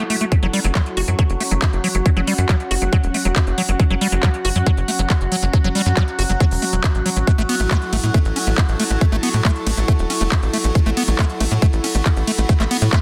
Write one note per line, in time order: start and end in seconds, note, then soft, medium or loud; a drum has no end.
0.00 0.31 F#3 medium
0.00 1.02 E4 medium
0.00 0.31 F#4 medium
0.00 1.42 A4 medium
0.00 1.58 A5 medium
0.10 0.16 A3 medium
0.10 open hi-hat loud
0.21 0.25 A3 medium
0.21 closed hi-hat medium
0.32 0.36 F#3 medium
0.32 13.02 F#3 medium
0.32 8.96 C#4 medium
0.32 13.02 F#4 medium
0.32 kick loud
0.32 closed hi-hat medium
0.43 0.49 F#1 medium
0.43 0.47 F#3 loud
0.43 7.83 F#4 medium
0.43 closed hi-hat soft
0.53 0.60 G3 loud
0.53 open hi-hat loud
0.64 0.71 F#1 medium
0.64 0.67 F#3 medium
0.64 closed hi-hat medium
0.75 0.81 F#3 loud
0.75 kick loud
0.75 clap loud
0.75 closed hi-hat medium
0.86 closed hi-hat soft
0.97 1.04 F#1 medium
0.97 1.01 F#4 loud
0.97 open hi-hat loud
1.05 1.15 F#2 medium
1.05 1.10 F#3 medium
1.05 8.98 F#5 medium
1.05 closed hi-hat medium
1.19 1.23 F#3 loud
1.19 kick loud
1.19 closed hi-hat medium
1.30 1.36 F#1 medium
1.30 closed hi-hat soft
1.40 1.43 A3 medium
1.40 open hi-hat loud
1.51 1.58 F#1 medium
1.51 1.54 F#3 medium
1.51 closed hi-hat medium
1.62 1.65 F#3 loud
1.62 kick loud
1.62 clap loud
1.62 closed hi-hat medium
1.73 1.80 F#1 medium
1.73 closed hi-hat soft
1.84 1.88 F#3 loud
1.84 open hi-hat loud
1.95 2.01 F#1 medium
1.95 1.97 F#3 medium
1.95 closed hi-hat medium
2.06 2.10 F#3 medium
2.06 kick loud
2.06 closed hi-hat medium
2.17 2.23 F#1 medium
2.17 2.21 F#3 loud
2.17 closed hi-hat soft
2.27 2.34 G3 loud
2.27 open hi-hat loud
2.38 2.45 F#2 medium
2.38 2.41 F#3 medium
2.38 closed hi-hat medium
2.49 2.55 F#3 loud
2.49 kick loud
2.49 clap loud
2.49 closed hi-hat medium
2.60 closed hi-hat soft
2.71 2.78 F#1 medium
2.71 2.75 F#4 loud
2.71 open hi-hat loud
2.82 2.88 F#1 medium
2.82 2.84 F#3 medium
2.82 closed hi-hat medium
2.93 2.97 F#3 loud
2.93 kick loud
2.93 closed hi-hat medium
3.03 3.10 E1 medium
3.03 closed hi-hat soft
3.14 3.17 A3 medium
3.14 open hi-hat loud
3.25 3.32 E1 medium
3.25 3.28 F#3 medium
3.25 closed hi-hat medium
3.36 3.39 F#3 medium
3.36 kick loud
3.36 clap loud
3.36 closed hi-hat medium
3.47 3.54 F#1 medium
3.47 closed hi-hat soft
3.58 3.62 F#3 loud
3.58 open hi-hat loud
3.69 3.75 F#1 medium
3.69 3.71 F#3 medium
3.69 closed hi-hat medium
3.80 3.84 F#3 medium
3.80 kick loud
3.80 closed hi-hat medium
3.90 3.97 F#1 medium
3.90 3.95 F#3 medium
3.90 closed hi-hat soft
4.01 4.08 G3 loud
4.01 open hi-hat loud
4.12 4.19 F#1 medium
4.12 4.15 F#3 medium
4.12 closed hi-hat medium
4.23 4.29 F#3 loud
4.23 kick loud
4.23 clap loud
4.23 closed hi-hat medium
4.34 closed hi-hat soft
4.45 4.51 F#1 medium
4.45 4.49 F#4 loud
4.45 open hi-hat loud
4.56 4.62 F#2 medium
4.56 4.58 F#3 medium
4.56 closed hi-hat medium
4.66 4.71 F#3 loud
4.66 kick loud
4.66 closed hi-hat medium
4.77 4.84 F#1 medium
4.77 closed hi-hat soft
4.88 4.91 A3 medium
4.88 open hi-hat loud
4.99 5.06 F#1 medium
4.99 5.02 F#3 medium
4.99 closed hi-hat medium
5.10 5.13 F#3 loud
5.10 kick loud
5.10 clap loud
5.10 closed hi-hat medium
5.21 5.28 F#1 medium
5.21 closed hi-hat soft
5.32 5.36 F#3 loud
5.32 open hi-hat loud
5.43 5.49 F#1 medium
5.43 5.45 F#3 medium
5.43 closed hi-hat medium
5.53 5.58 F#3 medium
5.53 kick loud
5.53 closed hi-hat medium
5.64 5.71 F#1 medium
5.64 5.69 F#3 loud
5.64 closed hi-hat soft
5.75 5.82 G3 loud
5.75 open hi-hat loud
5.86 5.93 F#2 medium
5.86 5.89 F#3 medium
5.86 closed hi-hat soft
5.97 6.03 F#3 loud
5.97 kick loud
5.97 clap loud
5.97 closed hi-hat medium
6.08 closed hi-hat soft
6.19 6.25 F#1 medium
6.19 6.23 F#4 loud
6.19 open hi-hat loud
6.30 6.36 F#1 medium
6.30 6.32 F#3 medium
6.30 closed hi-hat soft
6.40 6.45 F#3 loud
6.40 kick loud
6.40 closed hi-hat medium
6.51 6.58 E1 medium
6.51 open hi-hat medium
6.62 6.65 A3 medium
6.62 open hi-hat loud
6.73 6.80 E1 medium
6.73 6.76 F#3 medium
6.73 closed hi-hat medium
6.84 6.86 F#3 loud
6.84 kick loud
6.84 clap loud
6.84 closed hi-hat soft
6.95 7.01 A1 medium
6.95 closed hi-hat soft
7.06 7.10 F#3 loud
7.06 open hi-hat loud
7.16 7.23 A1 medium
7.16 7.19 F#3 medium
7.16 closed hi-hat medium
7.27 7.32 A3 medium
7.27 13.02 E4 medium
7.27 kick loud
7.27 closed hi-hat soft
7.38 7.45 A1 medium
7.38 7.42 A3 loud
7.38 closed hi-hat soft
7.48 7.55 B3 loud
7.48 13.02 A4 medium
7.48 open hi-hat loud
7.48 ride medium
7.60 7.67 A1 medium
7.60 7.63 A3 medium
7.60 closed hi-hat medium
7.71 7.77 A3 loud
7.71 kick loud
7.71 clap loud
7.71 closed hi-hat medium
7.82 closed hi-hat soft
7.93 7.99 A1 medium
7.93 7.97 A3 loud
7.93 open hi-hat loud
7.93 ride medium
8.03 8.10 A2 medium
8.03 8.06 A3 medium
8.03 closed hi-hat medium
8.14 8.19 A3 loud
8.14 kick loud
8.14 closed hi-hat medium
8.25 8.32 A1 medium
8.25 closed hi-hat soft
8.36 8.39 C#4 medium
8.36 open hi-hat loud
8.36 ride medium
8.44 8.54 A1 medium
8.44 8.50 A3 medium
8.44 11.46 A5 medium
8.44 closed hi-hat soft
8.58 8.60 A3 loud
8.58 kick loud
8.58 clap loud
8.58 closed hi-hat medium
8.69 8.75 A1 medium
8.69 closed hi-hat soft
8.80 8.84 A3 loud
8.80 open hi-hat loud
8.80 ride medium
8.90 8.97 A1 medium
8.90 8.93 A3 medium
9.01 9.06 A3 medium
9.01 kick loud
9.01 closed hi-hat medium
9.12 9.19 A1 medium
9.12 9.16 A3 loud
9.12 closed hi-hat soft
9.23 9.29 B3 loud
9.23 open hi-hat loud
9.23 ride medium
9.34 9.41 A2 medium
9.34 9.36 A3 medium
9.34 closed hi-hat medium
9.45 9.51 A3 loud
9.45 kick loud
9.45 clap loud
9.45 closed hi-hat medium
9.56 closed hi-hat soft
9.67 9.73 A1 medium
9.67 9.71 A3 loud
9.67 open hi-hat loud
9.67 ride medium
9.77 9.84 A1 medium
9.77 9.80 A3 medium
9.77 closed hi-hat medium
9.88 9.92 A3 loud
9.88 kick loud
9.88 closed hi-hat medium
9.99 10.06 E1 medium
9.99 closed hi-hat soft
10.10 10.13 C#4 medium
10.10 open hi-hat loud
10.10 ride medium
10.21 10.28 E1 medium
10.21 10.23 A3 medium
10.21 closed hi-hat medium
10.32 10.34 A3 medium
10.32 kick loud
10.32 clap loud
10.32 closed hi-hat medium
10.43 10.49 A1 medium
10.43 closed hi-hat soft
10.53 10.58 A3 loud
10.53 open hi-hat loud
10.53 ride medium
10.64 10.71 A1 medium
10.64 10.67 A3 medium
10.64 closed hi-hat medium
10.75 10.79 A3 medium
10.75 kick loud
10.75 closed hi-hat medium
10.86 10.93 A1 medium
10.86 10.90 A3 loud
10.86 closed hi-hat soft
10.97 11.03 B3 loud
10.97 open hi-hat loud
10.97 ride medium
11.08 11.15 A1 medium
11.08 11.10 A3 medium
11.08 closed hi-hat medium
11.19 11.25 A3 loud
11.19 kick loud
11.19 clap loud
11.19 closed hi-hat medium
11.30 13.02 B5 medium
11.30 closed hi-hat soft
11.40 11.47 A1 medium
11.40 11.45 A3 loud
11.40 open hi-hat loud
11.40 ride medium
11.51 11.58 A2 medium
11.51 11.54 A3 medium
11.51 closed hi-hat medium
11.62 11.66 A3 loud
11.62 kick loud
11.62 closed hi-hat medium
11.73 11.80 A1 medium
11.73 closed hi-hat soft
11.84 11.86 C#4 medium
11.84 open hi-hat loud
11.84 ride medium
11.95 12.01 A1 medium
11.95 11.97 A3 medium
11.95 closed hi-hat medium
12.06 12.08 A3 loud
12.06 kick loud
12.06 clap loud
12.06 closed hi-hat medium
12.17 12.23 A1 medium
12.17 closed hi-hat soft
12.27 12.32 A3 loud
12.27 open hi-hat loud
12.27 ride medium
12.38 12.45 A1 medium
12.38 12.41 A3 medium
12.38 closed hi-hat medium
12.49 12.53 A3 medium
12.49 kick loud
12.49 closed hi-hat medium
12.60 12.67 A1 medium
12.60 12.64 A3 loud
12.60 clap soft
12.60 closed hi-hat soft
12.71 12.77 B3 loud
12.71 open hi-hat loud
12.71 ride medium
12.82 12.88 A2 medium
12.82 12.84 A3 medium
12.82 closed hi-hat medium
12.93 12.99 A3 loud
12.93 kick loud
12.93 clap loud
12.93 closed hi-hat medium